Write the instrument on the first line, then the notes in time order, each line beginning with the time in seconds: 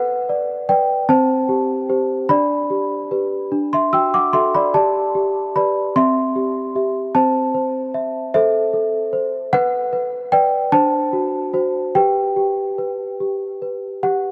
celesta
Already playing: B4 F#5
0.29 D5
0.69 B4 D5 G5
1.09 C4 C5 A5
1.49 G4
1.89 G4 C5
2.29 D4 D5 B5
2.70 G4
3.11 G4 B4
3.52 D4
3.73 E5 C6
3.93 F#4 G5 E6
4.14 F#5 D6
4.33 F#4 A4 E5 C6
4.55 D5 B5
4.74 G4 D5 A5
5.15 G4
5.56 G4 B4 D5 B5
5.96 C4 E5 C6
6.36 G4
6.76 G4 E5
7.15 C4 C5 A5
7.54 C5
7.94 E5
8.34 A4 C5 E5
8.73 A4
9.13 C5
9.53 B4 F#5
9.93 B4
10.32 B4 D5 G5
10.72 D4 C5 A5
11.13 F#4
11.54 F#4 C5
11.95 G4 B4 G5
12.36 G4
12.78 B4
13.20 G4
13.62 B4
14.03 G4 F#5